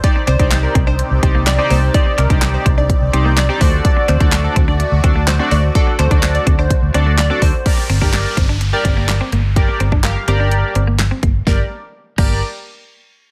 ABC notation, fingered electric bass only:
X:1
M:4/4
L:1/16
Q:1/4=126
K:Gm
V:1 name="Fingered electric bass" clef=bass
z2 C,, z3 C,,3 C,, C,,4 C,,2 | z2 C,, C,,3 C,,3 C,, C,,4 D,,2 | z2 D,, D,,3 D,,3 D,, z4 D,,2 | z2 D,, D,,3 D,,3 D,, D,,4 D,, z |
z2 G,,,4 G,,,4 G,,,4 G,,,2- | G,,,2 G,,,4 G,,,4 G,,,4 G,,,2 | G,,, z4 z G,,,2 z8 |]